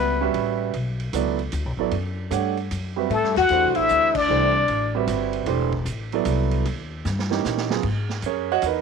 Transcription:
Already playing: upright bass C#2, grand piano G3 C#4 F#4 B4 E5, alto saxophone B3, muted trumpet B4
0.21 grand piano G3 C#4 F#4 B4 E5
0.34 upright bass A1, ride
0.73 upright bass B1, ride
1.00 ride
1.13 upright bass C#2, grand piano F#3 B3 E4 A4 D5, hi-hat pedal, ride
1.39 ride
1.52 upright bass D2, hi-hat pedal, ride
1.65 upright bass B1
1.77 upright bass A1, grand piano F#3 B3 E4 A4 D5
1.91 upright bass F#2, ride
2.31 upright bass G2, grand piano A3 D4 G4 C#5 F#5, hi-hat pedal, ride
2.57 ride
2.71 upright bass F#2, hi-hat pedal, ride
2.96 grand piano G3 C4 F#4 B4 E5
3.10 upright bass A2, alto saxophone A3, muted trumpet A4, ride
3.24 upright bass G2, snare
3.36 upright bass E2, alto saxophone F#4, muted trumpet F#5, snare, ride
3.49 upright bass E2, grand piano E3 A3 D4 G4 C5, hi-hat pedal, ride
3.64 upright bass C2
3.75 upright bass A1, alto saxophone E4, muted trumpet E5, ride
3.88 upright bass D2, hi-hat pedal
4.15 alto saxophone D4, muted trumpet D5, kick, crash
4.28 upright bass C2, grand piano E3 A3 D4 G4 C5
4.68 upright bass A1, ride
4.95 grand piano G3 C4 F#4 B4 E5
5.07 upright bass G1, hi-hat pedal, ride
5.33 ride
5.46 upright bass E1, grand piano E3 A3 D4 G4 C5, ride
5.73 kick
5.85 upright bass A1, hi-hat pedal, ride
6.12 grand piano F#3 B3 E4 A4 D5, ride
6.25 upright bass C2, hi-hat pedal, ride
6.51 ride
6.65 upright bass D#2, ride
7.05 upright bass G2, snare, hi-hat pedal
7.19 snare
7.29 grand piano E3 A#3 C#4 D#4 G4, snare
7.44 upright bass A#2, snare, hi-hat pedal
7.57 snare
7.70 grand piano C#3 F#3 B3 F4 G#4, snare
7.83 upright bass G#2, kick, crash
8.09 snare
8.22 upright bass F#2, grand piano C#4, hi-hat pedal, ride
8.26 grand piano G#4 A#4 C#5
8.52 grand piano F#4 C#5 D#5 F#5
8.62 upright bass E2, hi-hat pedal, ride
8.66 grand piano D#4 A#4 B4 D#5

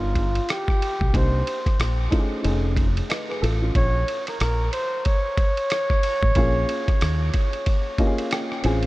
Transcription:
Already playing: fingered electric bass G1, upright piano B3 D4 D#4 F4, flugelhorn F4
0.15 kick, ride
0.35 ride
0.49 flugelhorn G4, cross-stick, hi-hat pedal, ride
0.68 kick, cross-stick
0.82 ride
1.01 fingered electric bass B1, kick
1.13 fingered electric bass C2, upright piano A#3 D4 D#4 G4, flugelhorn C5, kick, ride
1.47 ride
1.66 kick, cross-stick, ride
1.80 fingered electric bass A#1, cross-stick, hi-hat pedal, ride
2.10 upright piano A3 C#4 D#4 F4, kick, ride
2.18 upright piano G#4
2.43 fingered electric bass F1, upright piano A3 C#4 D#4 G#4, ride
2.77 kick, ride
2.97 ride
3.09 upright piano B4 D#5, cross-stick, hi-hat pedal, ride
3.29 upright piano G#4 B4, cross-stick
3.42 fingered electric bass A1, upright piano F4 A4, ride
3.62 upright piano C#4 F4
3.75 fingered electric bass A#1, flugelhorn C#5, kick, ride
4.08 ride
4.27 flugelhorn A#4, cross-stick, ride
4.40 fingered electric bass A#1, flugelhorn A#4, cross-stick, hi-hat pedal, ride
4.72 flugelhorn C5, ride
5.05 flugelhorn C#5, kick, ride
5.38 kick, ride
5.57 ride
5.70 cross-stick, hi-hat pedal, ride
5.90 kick, cross-stick
6.03 ride
6.23 fingered electric bass A1, kick
6.35 fingered electric bass A#1, upright piano A#3 C#4 F4 G#4, kick, ride
6.69 ride
6.88 kick, cross-stick, ride
7.01 fingered electric bass D#2, cross-stick, hi-hat pedal, ride
7.34 kick, ride
7.53 ride
7.66 kick, ride
7.98 upright piano A#3 C#4 F4 G4 D#5, kick, ride
8.06 upright piano G#4
8.18 upright piano F5, ride
8.31 upright piano G5, cross-stick, hi-hat pedal, ride
8.52 cross-stick
8.63 fingered electric bass A1, upright piano C4 C#4 F4 G#4 G#5, ride
8.83 ride

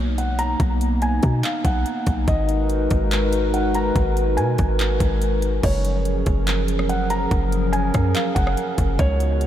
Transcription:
Already playing: 808-style bass B1, analog synth pad A#3 B3 D#4
0.18 felt piano F#5, closed hi-hat
0.39 felt piano A#5, closed hi-hat
0.60 808-style bass B1, kick, closed hi-hat
0.81 closed hi-hat
1.02 felt piano G#5, closed hi-hat
1.23 808-style bass B2, kick, closed hi-hat
1.43 felt piano F5, clap, closed hi-hat
1.65 808-style bass B1, felt piano F#5, kick, closed hi-hat
1.86 closed hi-hat
2.07 808-style bass B1, kick, closed hi-hat
2.27 808-style bass G#1, analog synth pad G#3 F#4 A#4 B4, felt piano D#5, kick, closed hi-hat
2.49 closed hi-hat
2.70 closed hi-hat
2.90 808-style bass G#1, kick, closed hi-hat
3.11 clap, closed hi-hat
3.33 closed hi-hat
3.54 felt piano F#5, closed hi-hat
3.75 felt piano A#5, closed hi-hat
3.96 808-style bass G#1, kick, closed hi-hat
4.17 closed hi-hat
4.37 808-style bass B2, felt piano G#5, closed hi-hat
4.58 808-style bass G#1, kick, closed hi-hat
4.79 clap, closed hi-hat
5.00 808-style bass G#1, kick, closed hi-hat
5.22 closed hi-hat
5.42 closed hi-hat
5.63 808-style bass F#1, analog synth pad F3 F#3 C#4 G#4 A#4, felt piano C#5, kick, closed hi-hat, crash
5.85 closed hi-hat
6.05 closed hi-hat
6.26 808-style bass F#1, kick, closed hi-hat
6.47 clap, closed hi-hat
6.68 closed hi-hat
6.79 cross-stick
6.89 felt piano F#5, closed hi-hat
7.10 felt piano A#5, closed hi-hat
7.31 808-style bass F#1, kick, closed hi-hat
7.52 closed hi-hat
7.73 felt piano G#5, closed hi-hat
7.94 808-style bass F#2, kick, cross-stick, closed hi-hat
8.15 felt piano F5, clap, closed hi-hat
8.35 808-style bass F#1, felt piano F#5, kick, closed hi-hat
8.47 cross-stick
8.57 closed hi-hat
8.78 808-style bass F#1, kick, closed hi-hat
8.99 808-style bass C#2, analog synth pad C#3 G#3 B3 D#4 F#4, felt piano C#5, kick, closed hi-hat
9.20 closed hi-hat
9.41 closed hi-hat

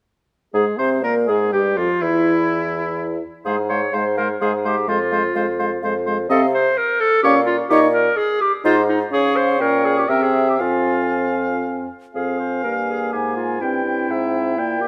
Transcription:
0.54 bassoon G#2, french horn G#3, clarinet G#4, oboe G#4, flute G#4
0.78 bassoon C3, french horn C4, oboe C5, clarinet C5, flute C5
1.03 bassoon A#2, french horn A#3, oboe A#4, clarinet A#4, flute A#4
1.27 bassoon G#2, french horn G#3, oboe G#4, clarinet G#4, flute G#4
1.52 bassoon G2, french horn G3, clarinet G4, oboe G4, flute G4
1.77 bassoon F2, french horn F3, oboe F4, clarinet F4, flute F4
2.01 bassoon E2, french horn E3, oboe E4, clarinet E4, flute E4
3.45 bassoon G#2, french horn G#3, clarinet G#4, oboe C5, flute F5
3.69 french horn G#3, oboe C5, clarinet C#5, flute F5
3.92 bassoon G#2, french horn G#3, oboe C5, clarinet C5, flute F5
4.16 french horn G#3, clarinet A#4, oboe C5, flute F5
4.41 bassoon G#2, french horn G#3, clarinet G#4, oboe C5, flute F5
4.65 french horn G#3, clarinet G4, oboe C5, flute F5
4.88 bassoon F2, french horn G#3, clarinet F4, oboe C5, flute F5
5.11 french horn G#3, oboe C5, flute F5
5.35 bassoon F2, french horn G#3, oboe C5, flute F5
5.59 french horn G#3, oboe C5, flute F5
5.83 bassoon F2, french horn G#3, oboe C5, flute F5
6.06 french horn G#3, oboe C5, flute F5
6.29 bassoon C3, french horn C4, clarinet A4, oboe D#5, flute F5
6.54 clarinet C5
6.78 clarinet A#4
7.00 clarinet A4
7.23 bassoon A#2, french horn C#4, clarinet G4, oboe C#5, flute F5
7.46 clarinet F4
7.70 bassoon A#2, french horn D#4, clarinet G4, oboe C#5, flute D#5
7.94 clarinet A#4
8.16 clarinet G#4
8.41 clarinet G4
8.64 bassoon G#2, french horn D#4, clarinet F4, oboe C5, flute D#5
8.89 clarinet D#4
9.11 bassoon C#3, french horn C#4, clarinet G#4, oboe C#5, flute F5
9.36 clarinet C5
9.59 bassoon A#2, french horn C#4, clarinet A#4, oboe C#5, flute G5
9.85 clarinet G#4
9.98 clarinet G4
10.08 bassoon C3, french horn C4, clarinet A#4, oboe E5, flute G5
10.22 clarinet G#4
10.50 clarinet G4
10.59 bassoon F2, french horn C4, clarinet F4, oboe F5, flute G#5
12.14 bassoon F2, french horn C4, clarinet G#4, oboe F5, flute G#5
12.39 clarinet C5
12.63 bassoon G2, french horn A#3, clarinet A#4
12.88 clarinet G#4
13.12 bassoon G#2, clarinet G4, oboe G#5
13.36 clarinet F4
13.60 bassoon G2, french horn C4, clarinet E4, flute G5, oboe G5
13.85 french horn C4
14.09 bassoon G#2, oboe E5
14.57 bassoon A#2, french horn A#3, flute G5, oboe G5
14.80 french horn A#3, clarinet G4

